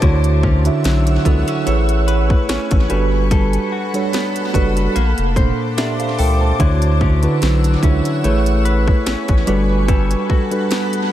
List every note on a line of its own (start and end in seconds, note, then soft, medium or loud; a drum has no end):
0.00 0.70 D2 loud
0.00 0.44 D3 loud
0.00 1.75 D3 medium
0.00 0.11 A#3 medium
0.00 0.11 D4 medium
0.00 0.45 D4 medium
0.00 0.45 E4 loud
0.00 1.76 E4 medium
0.00 0.45 F#4 loud
0.00 0.22 A#4 medium
0.00 0.11 C5 medium
0.00 1.65 C#5 medium
0.00 0.45 C#5 loud
0.00 1.65 F#5 medium
0.00 1.65 E6 medium
0.00 kick loud
0.00 closed hi-hat medium
0.24 closed hi-hat medium
0.43 1.25 C#4 medium
0.43 kick medium
0.65 1.07 D3 medium
0.65 1.08 D4 medium
0.65 1.08 E4 medium
0.65 1.08 F#4 medium
0.65 1.08 E5 medium
0.65 closed hi-hat medium
0.84 1.18 B1 loud
0.84 1.66 F#3 medium
0.84 snare loud
0.84 closed hi-hat medium
1.07 closed hi-hat medium
1.25 1.44 C#2 loud
1.25 1.66 D3 medium
1.25 1.48 B3 medium
1.25 1.66 D4 medium
1.25 1.65 E4 medium
1.25 1.67 F#4 medium
1.25 1.67 A4 loud
1.25 kick medium
1.25 closed hi-hat medium
1.48 1.75 C#4 medium
1.48 closed hi-hat medium
1.66 2.34 A1 loud
1.66 2.66 A3 medium
1.66 2.90 A3 medium
1.66 2.66 E4 medium
1.66 2.67 G#4 medium
1.66 2.67 B4 medium
1.66 2.67 C#5 loud
1.66 closed hi-hat medium
1.89 closed hi-hat medium
2.08 2.99 B4 medium
2.08 closed hi-hat medium
2.30 kick loud
2.49 2.58 A1 medium
2.49 2.99 C#4 medium
2.49 snare loud
2.49 closed hi-hat medium
2.71 2.87 A1 medium
2.71 kick loud
2.71 closed hi-hat medium
2.89 3.58 G1 loud
2.89 3.72 G3 loud
2.89 3.30 G3 medium
2.89 3.72 D4 medium
2.89 3.72 F#4 medium
2.89 4.93 A4 medium
2.89 3.72 A4 medium
2.89 3.72 B4 loud
2.89 4.93 F#5 medium
2.89 4.93 B5 loud
2.89 closed hi-hat medium
3.31 4.95 G3 medium
3.31 5.36 A4 medium
3.31 kick loud
3.31 closed hi-hat medium
3.53 closed hi-hat soft
3.72 4.53 F#4 medium
3.93 4.36 G3 medium
3.93 4.36 D4 medium
3.93 4.37 F#4 medium
3.93 4.37 A4 medium
3.93 4.37 C#5 medium
3.93 closed hi-hat medium
4.13 5.04 B3 medium
4.13 snare loud
4.13 closed hi-hat medium
4.36 closed hi-hat medium
4.54 4.88 F#1 loud
4.54 4.95 G3 medium
4.54 4.95 D4 medium
4.54 5.04 F#4 medium
4.54 4.95 F#4 medium
4.54 4.96 A4 medium
4.54 4.96 B4 loud
4.54 kick medium
4.54 closed hi-hat medium
4.77 closed hi-hat medium
4.95 5.14 A#1 loud
4.95 6.69 A#3 medium
4.95 6.58 C5 medium
4.95 6.58 A5 medium
4.95 6.58 D6 medium
4.95 closed hi-hat medium
5.18 5.52 F1 medium
5.18 closed hi-hat medium
5.36 5.94 A#2 medium
5.36 5.94 A#3 medium
5.36 5.94 D4 medium
5.36 5.78 A4 medium
5.36 6.69 C5 medium
5.36 5.78 C5 medium
5.36 kick medium
5.36 closed hi-hat medium
5.77 6.69 D4 medium
5.77 5.99 G4 medium
5.77 5.99 E5 medium
5.77 snare loud
5.77 closed hi-hat medium
6.00 6.18 A4 medium
6.00 6.18 F5 medium
6.00 closed hi-hat medium
6.19 6.53 C#2 medium
6.19 6.60 A4 medium
6.19 6.40 A#4 medium
6.19 6.40 G5 medium
6.19 open hi-hat medium
6.41 6.80 C5 medium
6.41 6.80 A5 medium
6.59 7.27 D2 loud
6.59 7.02 D3 loud
6.59 8.33 D3 medium
6.59 7.02 D4 loud
6.59 7.02 E4 loud
6.59 8.33 E4 medium
6.59 7.03 F#4 loud
6.59 8.22 C#5 medium
6.59 7.03 C#5 loud
6.59 8.22 F#5 medium
6.59 8.22 E6 medium
6.59 kick loud
6.59 closed hi-hat medium
6.82 closed hi-hat soft
7.01 7.82 C#4 medium
7.01 kick medium
7.22 7.65 D3 medium
7.22 7.65 D4 medium
7.22 7.65 E4 medium
7.22 7.66 F#4 medium
7.22 7.66 B4 loud
7.22 closed hi-hat soft
7.42 7.76 B1 medium
7.42 8.24 F#3 medium
7.42 snare loud
7.42 closed hi-hat medium
7.64 closed hi-hat medium
7.82 8.01 C#2 medium
7.82 8.24 D3 medium
7.82 8.33 C#4 medium
7.82 8.24 D4 medium
7.82 8.23 E4 medium
7.82 8.24 F#4 medium
7.82 8.24 C#5 loud
7.82 kick medium
7.82 closed hi-hat medium
8.05 closed hi-hat medium
8.23 8.92 A1 loud
8.23 9.24 A3 medium
8.23 9.91 A3 medium
8.23 9.24 E4 medium
8.23 9.24 G#4 medium
8.23 9.24 B4 medium
8.23 9.25 C#5 loud
8.23 closed hi-hat medium
8.46 closed hi-hat medium
8.65 9.56 B4 medium
8.65 closed hi-hat medium
8.88 kick loud
9.06 9.15 A1 medium
9.06 9.56 C#4 medium
9.06 snare loud
9.06 closed hi-hat medium
9.28 9.44 A1 medium
9.28 kick loud
9.28 closed hi-hat medium
9.47 10.15 G1 loud
9.47 10.29 G3 loud
9.47 9.87 G3 medium
9.47 10.29 D4 medium
9.47 10.30 F#4 medium
9.47 11.12 A4 medium
9.47 10.30 A4 medium
9.47 10.30 B4 loud
9.47 11.12 F#5 medium
9.47 11.12 B5 medium
9.47 closed hi-hat medium
9.88 11.12 G3 medium
9.88 11.12 A4 medium
9.88 kick loud
9.88 closed hi-hat medium
10.11 closed hi-hat medium
10.29 11.11 F#4 medium
10.29 kick medium
10.51 10.94 G3 medium
10.51 10.94 D4 medium
10.51 10.94 F#4 medium
10.51 10.94 A4 medium
10.51 10.94 B4 medium
10.51 closed hi-hat soft
10.71 11.12 B3 medium
10.71 snare loud
10.71 closed hi-hat medium
10.93 closed hi-hat medium